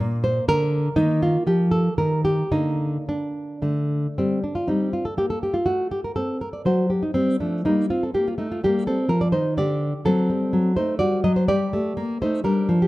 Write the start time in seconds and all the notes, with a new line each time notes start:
Already playing: A#3 D5
0.00 A#2
0.24 C5
0.48 D3 A#4
0.96 D#3 A#3 D#4
1.23 F4
1.47 F3 G4
1.71 A4
1.98 D#3 A#4
2.25 G4
2.51 D3 A#3 D#4
3.09 D4
3.62 D3 A3
4.18 G3 C4
4.44 D4
4.55 F4
4.67 G3 C4 D#4
4.93 F4
5.05 A4
5.17 A#3 G4
5.30 A4
5.43 G4
5.54 F4
5.66 A3 F#4
5.91 G4
6.04 A#4
6.16 C4 A4
6.41 A#4
6.53 D5
6.65 F#3 F#4 C5
6.90 G4
7.03 D#4
7.14 G3 C4
7.40 F3 A3 D4
7.65 G3 A#3 D#4
7.90 C4 F4
8.03 A4
8.14 A#3 G4
8.28 F4
8.38 A3 D#4
8.52 F4
8.64 G3 A#3 G4
8.87 C4 A4
9.09 F3 A#4
9.21 D5
9.32 D#3 D#4 C5
9.57 D3 G4 D5
10.05 F#3 C4 A4
10.30 G3
10.53 F#3
10.76 A3 D#4 C5
10.99 G3 F#4 D5
11.24 F#3 D#5
11.36 C5
11.48 G3 G4 D5
11.73 A3
11.97 A#3
12.22 A3 D#4 C5
12.44 G3 D4 A#4
12.69 F3
12.82 G4